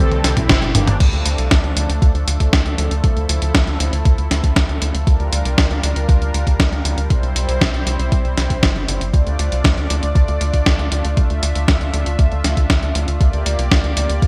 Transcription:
Already playing: E3 G3 C4 G4
0.00 C4 A4
0.12 C2, closed hi-hat, high tom
0.24 C2, snare, closed hi-hat
0.37 C2 C4 E4, kick, closed hi-hat, mid tom
0.49 G1, kick, snare, closed hi-hat, mid tom
0.62 G1, closed hi-hat
0.75 G1 A#3 D4, closed hi-hat, mid tom
0.87 G1, closed hi-hat, mid tom
1.00 D2 F3 A3 D4 A4, kick, closed hi-hat, crash
1.13 D2, closed hi-hat
1.26 D2, closed hi-hat
1.38 C2, closed hi-hat
1.51 D2, kick, snare, closed hi-hat
1.64 D2, closed hi-hat
1.76 D2, closed hi-hat
1.89 D2, closed hi-hat
2.02 D2, kick, closed hi-hat
2.14 D2, closed hi-hat
2.27 D2, closed hi-hat
2.40 D2, kick, closed hi-hat
2.53 D2, kick, snare, closed hi-hat
2.66 D2, closed hi-hat
2.78 D2, closed hi-hat
2.91 D2, closed hi-hat
3.04 C2 E4, kick, closed hi-hat
3.16 D2, closed hi-hat
3.29 D2, closed hi-hat
3.42 D2, closed hi-hat
3.55 D2, kick, snare, closed hi-hat
3.67 D2, closed hi-hat
3.80 D2, closed hi-hat
3.93 D2, closed hi-hat
4.05 D2, kick, closed hi-hat
4.18 D2, closed hi-hat
4.31 D2, snare, closed hi-hat
4.44 D2, kick, closed hi-hat
4.56 D2, kick, snare, closed hi-hat
4.69 D2, closed hi-hat
4.82 D2, closed hi-hat
4.94 D2, closed hi-hat
5.07 D2 G3 D4 F4 A#4, kick, closed hi-hat
5.20 D2, closed hi-hat
5.32 D2, closed hi-hat
5.45 C2, closed hi-hat
5.58 D2, kick, snare, closed hi-hat
5.71 D2, closed hi-hat
5.83 D2, closed hi-hat
5.96 D2, closed hi-hat
6.09 D2, kick, closed hi-hat
6.21 D2, closed hi-hat
6.34 D2, closed hi-hat
6.47 D2, kick, closed hi-hat
6.60 D2, kick, snare, closed hi-hat
6.72 D2, closed hi-hat
6.85 D2, closed hi-hat
6.97 D2, closed hi-hat
7.10 C2 C4 E4 C5, kick, closed hi-hat
7.23 C2, closed hi-hat
7.35 C2, closed hi-hat
7.48 C2, closed hi-hat
7.61 C2, kick, snare, closed hi-hat
7.73 C2, closed hi-hat
7.86 C2, closed hi-hat
7.99 C2, closed hi-hat
8.12 C2, kick, closed hi-hat
8.24 C2, closed hi-hat
8.37 C2, snare, closed hi-hat
8.50 C2, kick, closed hi-hat
8.63 G1, kick, snare, closed hi-hat
8.75 G1, closed hi-hat
8.88 G1, closed hi-hat
9.01 G1, closed hi-hat
9.13 D2 A3 D4 F4 D5, kick, closed hi-hat
9.27 D2, closed hi-hat
9.39 D2, closed hi-hat
9.52 C2, closed hi-hat
9.64 D2, kick, snare, closed hi-hat
9.77 D2, closed hi-hat
9.90 D2, closed hi-hat
10.03 D2, closed hi-hat
10.15 D2, kick, closed hi-hat
10.28 D2, closed hi-hat
10.41 D2, closed hi-hat
10.54 D2, kick, closed hi-hat
10.66 D2, kick, snare, closed hi-hat
10.79 D2, closed hi-hat
10.92 D2, closed hi-hat
11.05 D2, closed hi-hat
11.17 C2 E5, kick, closed hi-hat
11.30 D2, closed hi-hat
11.43 D2, closed hi-hat
11.55 D2, closed hi-hat
11.68 D2, kick, snare, closed hi-hat
11.81 D2, closed hi-hat
11.94 D2, closed hi-hat
12.06 D2, closed hi-hat
12.19 D2, kick, closed hi-hat
12.32 D2, closed hi-hat
12.44 D2, snare, closed hi-hat
12.57 D2, kick, closed hi-hat
12.70 D2, kick, snare, closed hi-hat
12.82 D2, closed hi-hat
12.95 D2, closed hi-hat
13.08 D2, closed hi-hat
13.21 D2 A#3 G4 D5, kick, closed hi-hat
13.33 D2, closed hi-hat
13.46 D2, closed hi-hat
13.59 C2, closed hi-hat
13.71 D2, kick, snare, closed hi-hat
13.84 D2, closed hi-hat
13.97 D2, closed hi-hat
14.09 D2, closed hi-hat
14.22 D2, kick, closed hi-hat

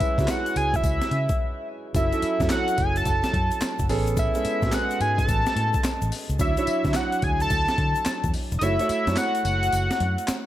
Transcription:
Already playing: G#3 C#4 E4 B4 E5
0.00 muted fingered electric bass stroke, kick, closed hi-hat, tambourine
0.18 C#3 G#3 C#4 E4 F#4, kick, snare, closed hi-hat, shaker
0.28 F#5, snare, clap, closed hi-hat, tambourine, shaker
0.46 closed hi-hat, shaker
0.56 C#2 G#5, closed hi-hat, tambourine
0.74 E5, kick, closed hi-hat, shaker
0.84 C#2, kick, closed hi-hat, tambourine, shaker
1.01 snare, closed hi-hat, shaker
1.11 C#3, closed hi-hat
1.29 kick, closed hi-hat, shaker
1.95 F#1 F#3 C#4 E4 A4 E5, kick, closed hi-hat, tambourine, shaker
2.12 F#3 C#4 E4 A4, closed hi-hat, shaker
2.22 muted fingered electric bass stroke, closed hi-hat, tambourine
2.40 F#2 F#3 C#4 E4 A4, kick, snare, closed hi-hat, shaker
2.49 F#5, snare, clap, closed hi-hat, tambourine, shaker
2.68 closed hi-hat, shaker
2.78 F#1 G#5, kick, closed hi-hat, tambourine
2.96 A5, closed hi-hat, shaker
3.05 F#1, kick, closed hi-hat, tambourine, shaker
3.24 snare, closed hi-hat, shaker
3.34 F#2, kick, closed hi-hat
3.51 closed hi-hat, shaker
3.61 muted fingered electric bass stroke, snare, clap, closed hi-hat, tambourine, shaker
3.79 F#1, kick, closed hi-hat, shaker
3.89 A1 B3 C#4 G#4 A4, open hi-hat, tambourine
4.07 closed hi-hat, shaker
4.17 E5, kick, closed hi-hat, tambourine, shaker
4.35 G#3 B3 C#4 A4, closed hi-hat, shaker
4.45 muted fingered electric bass stroke, closed hi-hat, tambourine
4.62 A2 G#3 B3 C#4 F#4, kick, snare, closed hi-hat, shaker
4.71 G#4 F#5, snare, clap, closed hi-hat, tambourine, shaker
4.90 closed hi-hat, shaker
5.00 G#2 G#5, closed hi-hat, tambourine
5.18 A5, kick, closed hi-hat, shaker
5.28 A1, kick, closed hi-hat, tambourine, shaker
5.46 snare, closed hi-hat, shaker
5.56 A2, closed hi-hat
5.74 kick, closed hi-hat, shaker
5.84 muted fingered electric bass stroke, snare, clap, closed hi-hat, tambourine, shaker
6.02 A1, closed hi-hat, shaker
6.12 open hi-hat, tambourine
6.29 C#2, closed hi-hat, shaker
6.39 D2 F#3 D4 E4 C#5 E5, kick, closed hi-hat, tambourine, shaker
6.57 F#3 D4 E4 C#5, closed hi-hat, shaker
6.67 muted fingered electric bass stroke, closed hi-hat, tambourine
6.85 D3 F#3 D4 E4 C#5, kick, snare, closed hi-hat, shaker
6.94 F#5, snare, clap, closed hi-hat, tambourine, shaker
7.12 closed hi-hat, shaker
7.22 D2 G#5, kick, closed hi-hat, tambourine
7.40 A5, closed hi-hat, shaker
7.50 D2, kick, closed hi-hat, tambourine, shaker
7.68 snare, closed hi-hat, shaker
7.78 D3, kick, closed hi-hat
7.95 closed hi-hat, shaker
8.05 muted fingered electric bass stroke, snare, clap, closed hi-hat, tambourine, shaker
8.24 E2, kick, closed hi-hat, shaker
8.34 open hi-hat, tambourine
8.52 E1, closed hi-hat, shaker
8.59 F#1 A3 E4 F#4 D#5, closed hi-hat, tambourine, shaker
8.63 C#5 E5
8.79 A3 E4 F#4 C#5, closed hi-hat, shaker
8.89 muted fingered electric bass stroke, closed hi-hat, tambourine
9.07 F#2 A3 E4 F#4 C#5, snare, closed hi-hat, shaker
9.16 F#5, snare, clap, closed hi-hat, tambourine, shaker
9.35 closed hi-hat, shaker
9.45 F#1 F#5, closed hi-hat, tambourine
9.63 closed hi-hat, shaker
9.73 F#1, closed hi-hat, tambourine, shaker
9.91 snare, closed hi-hat, shaker
10.00 F#2, closed hi-hat
10.18 closed hi-hat, shaker
10.28 muted fingered electric bass stroke, snare, clap, closed hi-hat, tambourine, shaker

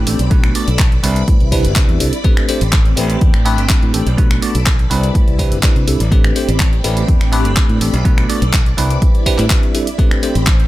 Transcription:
Already playing: C4 G4 D5 B5
0.07 A1 A3 C4 D4 G4 A4, open hi-hat
0.19 B1, closed hi-hat
0.31 A3 B3 D4 F#4 A4 B4, kick, closed hi-hat
0.44 finger snap, closed hi-hat
0.55 A3 B3 D4 F#4 D5, open hi-hat
0.68 B1, closed hi-hat
0.79 finger snap, kick, clap, closed hi-hat
0.92 closed hi-hat
1.03 C2 G3 C4 D4 E4 B4, open hi-hat
1.16 closed hi-hat
1.28 A2, kick, closed hi-hat
1.40 C2, closed hi-hat
1.51 G3 C4 D4 E4 B4, kick, open hi-hat
1.65 G1, closed hi-hat
1.76 C2 G3 C4 D4 E4 B4, kick, clap, closed hi-hat
1.89 E2, closed hi-hat
2.00 C2 G3 C4 D4 E4 A4, open hi-hat
2.13 closed hi-hat
2.24 A3 C4 D4 G4 B4, kick, closed hi-hat
2.37 finger snap, closed hi-hat
2.48 A3 C4 D4 G4 C5, open hi-hat
2.61 A1, closed hi-hat
2.72 finger snap, kick, clap, closed hi-hat
2.85 closed hi-hat
2.97 A1 A3 C4 D4 G4 B4, open hi-hat
3.10 closed hi-hat
3.21 E2, kick, closed hi-hat
3.34 A1, finger snap, closed hi-hat
3.45 A3 C4 D4 G4 B4, open hi-hat
3.58 G1, closed hi-hat
3.69 A3 C4 D4 G4 B4, kick, clap, closed hi-hat
3.82 A2, closed hi-hat
3.93 A1 A3 C4 D4 G4 A4, open hi-hat
4.07 B1, closed hi-hat
4.17 A3 B3 D4 F#4 A4 B4, kick, closed hi-hat
4.31 finger snap, closed hi-hat
4.42 A3 B3 D4 F#4 D5, open hi-hat
4.55 B1, closed hi-hat
4.66 finger snap, kick, clap, closed hi-hat
4.79 closed hi-hat
4.90 C2 G3 C4 D4 E4 B4, open hi-hat
5.04 closed hi-hat
5.15 A2, kick, closed hi-hat
5.27 C2, closed hi-hat
5.38 G3 C4 D4 E4 B4, kick, open hi-hat
5.52 G1, closed hi-hat
5.63 G3 C4 D4 E4 B4, kick, clap, closed hi-hat
5.76 C3, closed hi-hat
5.87 C2 G3 C4 D4 E4 A4, open hi-hat
6.00 A1, closed hi-hat
6.11 A3 C4 D4 G4 B4 D5 B5, kick, closed hi-hat
6.24 finger snap, closed hi-hat
6.35 A3 C4 D4 G4 C5, open hi-hat
6.48 A1, closed hi-hat
6.60 finger snap, kick, clap, closed hi-hat
6.73 closed hi-hat
6.84 A1 A3 C4 D4 G4 B4, open hi-hat
6.97 closed hi-hat
7.08 E2, kick, closed hi-hat
7.21 A1, finger snap, closed hi-hat
7.32 A3 C4 D4 G4 B4, open hi-hat
7.45 G1, closed hi-hat
7.56 A3 C4 D4 G4 B4, kick, clap, closed hi-hat
7.69 A2, closed hi-hat
7.81 A1 A3 C4 D4 G4 A4, open hi-hat
7.94 B1, closed hi-hat
8.05 A3 B3 D4 F#4 A4 B4, kick, closed hi-hat
8.18 finger snap, closed hi-hat
8.29 A3 B3 D4 F#4 D5, open hi-hat
8.42 B1, closed hi-hat
8.53 finger snap, kick, clap, closed hi-hat
8.66 closed hi-hat
8.77 C2 G3 C4 D4 E4 B4 B5, open hi-hat
8.90 closed hi-hat
9.02 kick, closed hi-hat
9.15 closed hi-hat
9.26 G3 C4 D4 E4 B4, kick, open hi-hat
9.38 A2, clap, closed hi-hat
9.50 G3 C4 D4 B4, kick, clap, closed hi-hat
9.63 closed hi-hat
9.74 G3 C4 D4 E4 A4, open hi-hat
9.87 closed hi-hat
9.98 A3 C4 D4 G4 B4 D5, kick, closed hi-hat
10.11 finger snap, closed hi-hat
10.22 A3 C4 D4 G4 C5, open hi-hat
10.35 A1, closed hi-hat
10.47 finger snap, kick, clap, closed hi-hat
10.60 closed hi-hat

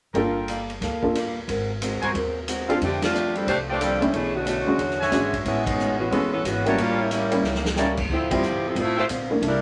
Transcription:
0.14 G1 G3 A#3 D4 F4 A4 A#4 G5, kick, ride
0.18 A4
0.48 G3 A#3 F4 A4, hi-hat pedal, ride
0.70 ride
0.81 D2 G3 A#3 F4 A4, kick, snare, ride
1.02 A#3 D4 F4 A4, kick
1.15 G3 A#3 F4 A4, hi-hat pedal, ride
1.48 G#1 G#3 C4 F#4 A#4, kick, ride
1.81 G#3 C4 F#4 A#4, hi-hat pedal, ride
2.02 G1 F#4 A#4 C5 G#5, ride
2.14 D#2 G#3 C4 F#4 A#4, kick, ride
2.48 G#3 C4 F#4 A#4, hi-hat pedal, ride
2.68 F3 C4 D4 F4 G4 A4 D5 F5, ride
2.80 F2 D3 F3 A3 C4 D4 G4, kick, ride
3.02 A3 C4 D4 F4, snare, ride
3.13 F3 A3 D4 G4, hi-hat pedal
3.35 G3 C4 D4 A4, ride
3.47 C2 F3 A3 D4 G4 C5, kick, ride
3.68 A3 D4 F4 G4 A4 C5 D5 G5
3.80 F3 G3 A3 C4 D4 G4 A4, hi-hat pedal, ride
4.00 G3 A3 C4 C#4 D4 E4 A4, ride
4.12 B1 B2 E3 A3 C#4 D4 G#4, kick, ride
4.16 E4
4.35 D3 A3 C#4 F#4
4.45 B2 D3 A3 C#4 D4 E4 F#4, hi-hat pedal, ride
4.66 G#3 C#4 D4 F#4, muted upright bass stroke
4.78 E2 E3 D4 G#4 C#5, kick, ride
4.90 snare
5.00 F#4 C#5 E5 G#5, snare
5.11 G#1 E3 G#3 C#4 D4 F#4 G#4 C#5, hi-hat pedal, ride
5.33 kick, ride
5.45 A1 A2 G#3 B3 C#4 E4 F#4, kick, ride
5.66 G#3 B3 C#4 D#4, kick, ride
5.79 A2 G#3 C#4 F#4, hi-hat pedal
5.98 E3 B3 C#4 F#4
6.10 E1 A2 E3 G#3 B3 C#4 F#4 A4, kick, ride
6.14 F#4
6.32 E3 B3 C#4 A4
6.44 G#1 A2 E3 G#3 B3 C#4 F#4, hi-hat pedal, ride
6.65 E3 G3 A#3 B3 C#4 E4 F#4 G4 A#4 C#5 A5, ride
6.77 A1 A2 G3 A#3 C#4 D4 F4, kick, ride
7.00 G3 A#3 C#4 E4
7.11 A2 G3 A#3 C#4 E4, hi-hat pedal, ride
7.31 G3 A#3 C#4 E4, ride
7.43 C#2 A2 G3 A#3, snare
7.47 C#4
7.55 snare
7.65 snare
7.76 A2 G3 A#3 C#4 E4 G4 A#4 C#5 A5, snare, hi-hat pedal
7.97 kick, crash
8.09 D2 D3 F3 G3 C4 E4 F4 A4, kick
8.31 F3 G3 C4 E4 G4, kick, ride
8.43 D3 G3 C4 F4, hi-hat pedal
8.67 F3 C4 E4 A4
8.75 A1 D3 G3 A3 C4 F4, kick, ride
8.79 E4 C5
8.96 A3 E4 F4 C5 E5 G5
9.09 A#1 D3 G3 C4 F4, hi-hat pedal, ride
9.30 E3 A3 A#3 D4
9.40 C2 C3 A#3 E4 A4, kick, ride
9.47 G3 D4 E4 A#4

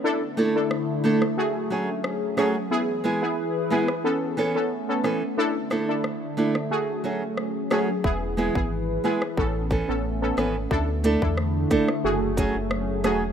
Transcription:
0.04 D3 A3 D4 E4 A4
0.37 A3 D4 E4 A4
0.55 D4 E4 A4
0.71 cross-stick
1.04 A3 D4 E4 A4
1.22 cross-stick
1.37 F#3 A3 C#4 F#4 G#4
1.70 F#3 A3 C#4 G#4
2.04 cross-stick
2.37 F#3 A3 C#4 F#4 G#4, cross-stick
2.71 E3 B3 E4 G#4 B4
3.04 G#3 B3 E4 G#4
3.22 B3 E4 G#4
3.70 G#3 B3 E4 G#4
3.88 cross-stick
4.04 A3 B3 C#4 A4
4.37 E3 B3 C#4 A4
4.55 B3 C#4 A4
4.88 B3 C#4 A4
5.04 E3 B3 C#4 A4, cross-stick
5.37 D3 A3 D4 E4 A4
5.70 A3 D4 E4 A4, cross-stick
5.88 D4 E4 A4
6.04 cross-stick
6.37 A3 D4 E4 A4
6.55 cross-stick
6.71 F#3 A3 C#4 F#4 G#4
7.04 F#3 A3 C#4 G#4
7.37 cross-stick
7.70 F#3 A3 C#4 F#4 G#4, cross-stick
8.04 E1 E3 B3 E4 G#4 B4, kick
8.37 G#3 B3 E4 G#4
8.55 G#1 B3 E4 G#4, kick
9.04 G#3 B3 E4 G#4
9.22 cross-stick
9.37 A1 A3 B3 C#4 A4, kick
9.70 E3 B3 C#4 A4, kick
9.88 A1 B3 C#4 A4
10.22 B3 C#4 A4
10.37 G#1 E3 B3 C#4 A4, cross-stick
10.71 D2 D3 A3 D4 E4 A4, kick
11.04 A3 D4 E4 A4, closed hi-hat
11.22 E2 D4 E4 A4, kick
11.38 cross-stick
11.70 A3 D4 E4 A4, kick, closed hi-hat
11.88 cross-stick
12.04 F#1 F#3 A3 C#4 F#4 G#4
12.37 F#3 A3 C#4 G#4, kick, closed hi-hat
12.55 F#1
12.71 cross-stick
13.04 E1 F#3 A3 C#4 F#4 G#4, cross-stick, closed hi-hat

